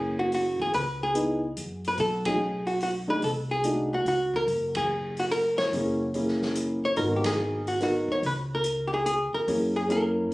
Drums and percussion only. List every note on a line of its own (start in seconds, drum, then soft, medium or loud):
0.32 open hi-hat soft
0.60 kick soft
0.73 kick soft
0.73 open hi-hat soft
1.15 closed hi-hat soft
1.57 closed hi-hat soft
1.84 open hi-hat soft
1.97 kick soft
1.97 open hi-hat soft
2.25 kick medium
2.25 ride medium
2.67 open hi-hat soft
2.80 open hi-hat soft
3.22 kick soft
3.22 open hi-hat soft
3.64 closed hi-hat soft
4.06 open hi-hat soft
4.34 kick soft
4.48 kick soft
4.48 open hi-hat soft
4.75 kick medium
4.75 ride medium
5.17 open hi-hat soft
5.31 open hi-hat soft
5.59 snare soft
5.73 kick soft
5.73 open hi-hat soft
6.14 open hi-hat soft
6.28 snare soft
6.42 snare soft
6.55 closed hi-hat soft
6.96 kick soft
6.96 open hi-hat soft
7.24 snare medium
7.24 ride medium
7.67 open hi-hat soft
7.80 snare soft
7.80 open hi-hat soft
8.08 kick soft
8.23 kick soft
8.23 open hi-hat soft
8.64 closed hi-hat soft
9.06 closed hi-hat soft
9.48 kick soft
9.48 open hi-hat soft
9.90 closed hi-hat soft